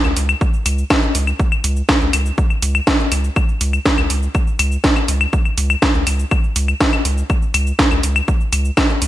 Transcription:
0.04 0.13 C#2 medium
0.04 claves medium
0.04 shaker soft
0.17 0.35 C#2 medium
0.17 open hi-hat loud
0.17 shaker medium
0.29 claves medium
0.29 shaker soft
0.41 kick loud
0.41 shaker soft
0.54 shaker soft
0.66 0.84 C#2 loud
0.66 open hi-hat loud
0.66 claves medium
0.66 shaker medium
0.78 shaker soft
0.90 kick loud
0.90 snare loud
0.90 claves medium
0.90 shaker soft
1.03 shaker soft
1.15 1.33 C#2 medium
1.15 open hi-hat loud
1.15 shaker medium
1.27 claves medium
1.27 shaker soft
1.40 kick loud
1.40 shaker soft
1.52 claves medium
1.52 shaker soft
1.64 1.82 C#2 loud
1.64 open hi-hat loud
1.64 shaker medium
1.77 shaker soft
1.89 kick loud
1.89 snare loud
1.89 claves medium
1.89 shaker soft
2.01 2.10 C#2 medium
2.01 shaker soft
2.13 2.31 C#2 medium
2.13 open hi-hat loud
2.13 claves medium
2.13 shaker medium
2.26 shaker soft
2.38 kick loud
2.38 shaker soft
2.50 claves medium
2.50 shaker soft
2.62 2.80 C#2 loud
2.62 open hi-hat loud
2.62 shaker medium
2.75 claves medium
2.75 shaker soft
2.87 kick loud
2.87 snare loud
2.87 shaker soft
3.00 shaker soft
3.12 3.30 C#2 medium
3.12 open hi-hat loud
3.12 claves medium
3.12 shaker medium
3.24 shaker soft
3.36 kick loud
3.36 claves medium
3.36 shaker soft
3.49 shaker soft
3.61 3.79 C#2 loud
3.61 open hi-hat loud
3.61 shaker medium
3.73 claves medium
3.73 shaker soft
3.86 kick loud
3.86 snare loud
3.86 shaker soft
3.98 4.07 C#2 medium
3.98 claves medium
3.98 shaker soft
4.10 4.28 C#2 medium
4.10 open hi-hat loud
4.10 shaker medium
4.23 shaker soft
4.35 kick loud
4.35 claves medium
4.35 shaker soft
4.47 shaker soft
4.59 4.77 C#2 loud
4.59 open hi-hat loud
4.59 claves medium
4.59 shaker medium
4.72 shaker soft
4.84 kick loud
4.84 snare loud
4.84 shaker soft
4.96 claves medium
4.96 shaker soft
5.08 5.26 C#2 medium
5.08 open hi-hat loud
5.08 shaker medium
5.21 claves medium
5.21 shaker soft
5.33 kick loud
5.33 shaker soft
5.45 claves medium
5.45 shaker soft
5.58 5.76 C#2 loud
5.58 open hi-hat loud
5.58 shaker medium
5.70 claves medium
5.70 shaker soft
5.82 kick loud
5.82 snare loud
5.82 shaker soft
5.95 6.03 C#2 medium
5.95 shaker soft
6.07 6.25 C#2 medium
6.07 open hi-hat loud
6.07 claves medium
6.07 shaker medium
6.19 shaker soft
6.31 kick loud
6.31 claves medium
6.31 shaker soft
6.44 shaker soft
6.56 6.74 C#2 loud
6.56 open hi-hat loud
6.56 shaker medium
6.68 claves medium
6.68 shaker soft
6.81 kick loud
6.81 snare loud
6.81 shaker soft
6.93 claves medium
6.93 shaker soft
7.05 7.23 C#2 loud
7.05 open hi-hat loud
7.05 shaker medium
7.18 shaker soft
7.30 kick loud
7.30 claves medium
7.30 shaker soft
7.42 shaker soft
7.54 7.72 C#2 loud
7.54 open hi-hat loud
7.54 claves medium
7.54 shaker medium
7.67 shaker soft
7.79 kick loud
7.79 snare loud
7.79 shaker soft
7.91 8.00 C#2 medium
7.91 claves medium
7.91 shaker soft
8.03 8.21 C#2 medium
8.03 open hi-hat loud
8.03 shaker medium
8.16 claves medium
8.16 shaker soft
8.28 kick loud
8.28 shaker soft
8.40 shaker soft
8.53 8.71 C#2 loud
8.53 open hi-hat loud
8.53 claves medium
8.53 shaker medium
8.65 shaker soft
8.77 kick loud
8.77 snare loud
8.77 claves medium
8.77 shaker soft
8.90 shaker soft
9.02 9.08 C#2 medium
9.02 open hi-hat loud
9.02 shaker medium

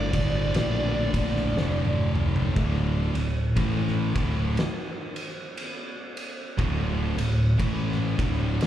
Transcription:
0.00 0.51 G1 loud
0.00 0.51 D2 medium
0.00 0.52 A2 loud
0.00 0.10 D3 loud
0.00 2.11 D5 medium
0.11 1.53 D2 medium
0.11 1.53 A2 medium
0.11 1.52 D3 medium
0.11 kick medium
0.11 ride medium
0.53 1.51 A#1 medium
0.53 2.53 D2 medium
0.53 2.53 A2 medium
0.53 2.54 D3 medium
0.53 snare loud
0.53 ride loud
1.14 kick medium
1.14 ride medium
1.36 snare soft
1.54 2.52 F1 medium
1.54 2.53 D2 medium
1.54 2.54 A2 medium
1.54 2.54 D3 medium
1.54 snare medium
1.85 high tom medium
2.15 mid tom medium
2.36 floor tom medium
2.54 3.11 D1 medium
2.54 3.12 D2 medium
2.54 3.13 A2 loud
2.54 3.13 D3 loud
2.54 kick loud
2.54 ride medium
3.15 3.53 D1 medium
3.15 3.48 D2 medium
3.15 3.48 A2 medium
3.15 ride medium
3.56 4.11 A1 loud
3.56 4.13 A2 loud
3.56 4.14 E3 loud
3.56 4.14 A3 loud
3.56 kick loud
3.56 ride loud
3.88 snare soft
4.14 4.54 D1 loud
4.14 4.55 D2 medium
4.14 4.55 A2 loud
4.14 4.55 D3 loud
4.14 kick loud
4.14 ride medium
4.57 snare loud
4.57 ride loud
5.16 ride medium
5.57 ride loud
6.17 ride medium
6.57 7.13 D1 medium
6.57 7.15 D2 medium
6.57 7.15 A2 loud
6.57 7.16 D3 loud
6.57 kick loud
6.57 ride loud
7.17 7.56 D1 medium
7.17 7.50 D2 medium
7.17 7.50 A2 medium
7.17 ride medium
7.58 8.14 A1 loud
7.58 8.16 A2 medium
7.58 8.16 E3 medium
7.58 8.16 A3 loud
7.58 kick loud
7.58 ride loud
7.92 snare soft
8.17 8.57 D1 loud
8.17 8.58 D2 medium
8.17 8.58 A2 medium
8.17 8.58 D3 loud
8.17 kick loud
8.17 ride medium
8.61 snare loud
8.61 ride loud

